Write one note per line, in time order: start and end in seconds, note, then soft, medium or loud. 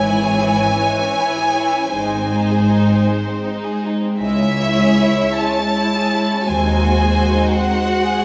0.00 0.60 G#1 medium
0.00 0.61 G#2 soft
0.00 1.94 E3 soft
0.00 1.90 E4 soft
0.00 0.22 E4 soft
0.00 1.90 C#5 soft
0.00 3.02 G#5 medium
0.21 0.41 G#4 soft
0.41 0.60 E4 soft
0.60 0.79 C#4 soft
0.80 0.99 G#3 soft
0.99 1.18 C#4 soft
1.17 1.36 E4 soft
1.38 1.56 G#4 soft
1.56 1.75 E4 soft
1.75 1.94 C#4 soft
1.94 2.88 G#1 soft
1.94 2.88 G#2 soft
1.94 2.12 G#3 soft
1.94 8.25 G#3 soft
1.94 3.99 D#4 soft
1.94 3.99 C5 soft
2.14 2.32 C4 soft
2.33 2.51 D#4 soft
2.51 2.69 G#4 soft
2.71 2.89 D#4 soft
2.88 3.07 C4 soft
3.07 3.25 G#3 soft
3.27 3.45 C4 soft
3.45 3.64 D#4 soft
3.64 3.83 G#4 soft
3.83 4.02 D#4 soft
4.03 4.21 C4 soft
4.19 5.20 C#2 soft
4.19 4.39 G#3 soft
4.19 6.44 E4 soft
4.19 6.45 C#5 soft
4.19 5.35 E5 medium
4.41 4.60 C#4 soft
4.61 4.80 E4 soft
4.80 5.00 G#4 soft
5.01 5.20 E4 soft
5.21 5.40 C#4 soft
5.38 5.59 G#3 soft
5.38 6.47 A5 medium
5.59 5.77 C#4 soft
5.78 5.95 E4 soft
5.96 6.13 G#4 soft
6.14 6.31 E4 soft
6.32 6.49 C#4 soft
6.47 7.36 D#2 soft
6.47 7.36 D#2 medium
6.47 6.64 C4 soft
6.47 8.25 F#4 soft
6.47 8.25 C5 soft
6.47 7.53 G#5 medium
6.66 6.83 D#4 soft
6.83 7.00 F#4 soft
7.01 7.18 G#4 soft
7.18 7.35 F#4 soft
7.36 7.53 D#4 soft
7.52 7.69 C4 soft
7.52 8.25 F#5 medium
7.69 7.86 D#4 soft
7.85 8.03 F#4 soft
8.03 8.20 G#4 soft
8.20 8.25 F#4 soft